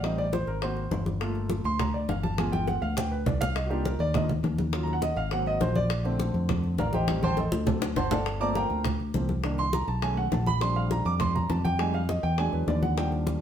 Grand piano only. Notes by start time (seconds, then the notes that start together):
0.03 G3 C4 D#4 D#5
0.18 D5
0.34 C5
0.48 A#4
0.62 A#3 C4 F#4 C5
1.20 A3 A#3 F4
1.65 C6
1.80 A#5
1.94 D5
2.09 F5
2.23 A5
2.38 G#3 B3 F4 G#5
2.52 G5
2.68 F#5
2.82 F5
2.97 G5
3.12 B4
3.26 D5
3.41 F5
3.55 D#5
3.66 A#3 D4 F#4
3.70 D#4 F4 G4
3.86 A#4
4.00 D5
4.14 A#3 D4 D#4 F4 D#5
4.73 F#3 C#4 F4
4.83 A#5
4.93 F#5
5.03 D#5
5.17 F5
5.32 F#3 A#3 C4 F#5
5.47 D#5
5.61 C5
5.76 D5
6.04 D3 A3 C4
6.79 A#4 D5 F5 A#5
6.94 G4 C5 D#5 G5
7.08 D#3 G3 C4
7.23 C5 G5 A5 C6
7.38 A4 C5 D#5 A5
7.66 F#3 A3 C4
7.97 C5 F#5 A5 C6
8.11 A4 D5 F5 A5
8.40 F3 A3 A#3 C4 D5 A5 A#5 D6
8.56 A#4 F5 G5 A#5
9.14 F3 A3 A#3 C4
9.44 D#3 A#3 D4
9.59 C6
9.74 A#5
9.88 A5
10.02 D#3 G#3 A3 C#4 G#5
10.17 F#5
10.33 A5
10.47 B5
10.61 G3 C4 D4 C6
10.76 F5
10.91 A#5
11.06 D6
11.20 C6
11.35 A#5
11.50 A5
11.65 G5
11.79 G3 G#3 D#4 G#5
11.94 F5
12.09 D#5
12.23 G5
12.38 F#3 G#3 D4 G#5
12.53 B4
12.68 D5
12.83 F#5
12.97 F3 G3 D4 G5